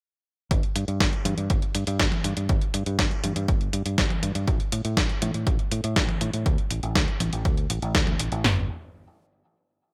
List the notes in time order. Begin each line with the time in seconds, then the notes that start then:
0.51 G1, kick, closed hi-hat
0.63 closed hi-hat
0.76 G2, closed hi-hat
0.88 G2, closed hi-hat
1.00 G1, kick, snare, closed hi-hat
1.13 closed hi-hat
1.25 G2, closed hi-hat, high tom
1.38 G2, closed hi-hat
1.50 G1, kick, closed hi-hat
1.62 closed hi-hat
1.75 G2, closed hi-hat
1.87 G2, closed hi-hat
1.99 G1, kick, snare, closed hi-hat
2.12 closed hi-hat, high tom
2.24 G2, closed hi-hat
2.37 G2, closed hi-hat
2.49 G1, kick, closed hi-hat
2.61 closed hi-hat
2.74 G2, closed hi-hat
2.86 G2, closed hi-hat
2.99 G1, kick, snare, closed hi-hat
3.11 closed hi-hat
3.24 G2, closed hi-hat, high tom
3.36 G2, closed hi-hat
3.48 G1, kick, closed hi-hat
3.61 closed hi-hat
3.73 G2, closed hi-hat
3.86 G2, closed hi-hat
3.98 G1, kick, snare, closed hi-hat
4.10 closed hi-hat, high tom
4.23 G2, closed hi-hat
4.35 G2, closed hi-hat
4.48 A1, kick, closed hi-hat
4.60 closed hi-hat
4.72 A2, closed hi-hat
4.85 A2, closed hi-hat
4.97 A1, kick, snare, closed hi-hat
5.09 closed hi-hat
5.22 A2, closed hi-hat, high tom
5.34 A2, closed hi-hat
5.47 A1, kick, closed hi-hat
5.59 closed hi-hat
5.72 A2, closed hi-hat
5.84 A2, closed hi-hat
5.96 A1, kick, snare, closed hi-hat
6.09 closed hi-hat, high tom
6.21 A2, closed hi-hat
6.33 A2, closed hi-hat
6.46 D2, kick, closed hi-hat
6.58 closed hi-hat
6.71 A1, closed hi-hat
6.83 A1, closed hi-hat
6.95 D2, kick, snare, closed hi-hat
7.08 closed hi-hat
7.20 A1, closed hi-hat, high tom
7.33 A1, closed hi-hat
7.45 D2, kick, closed hi-hat
7.57 closed hi-hat
7.70 A1, closed hi-hat
7.82 A1, closed hi-hat
7.95 D2, kick, snare, closed hi-hat
8.07 closed hi-hat, high tom
8.19 A1, closed hi-hat
8.32 A1, closed hi-hat
8.44 G1, snare, floor tom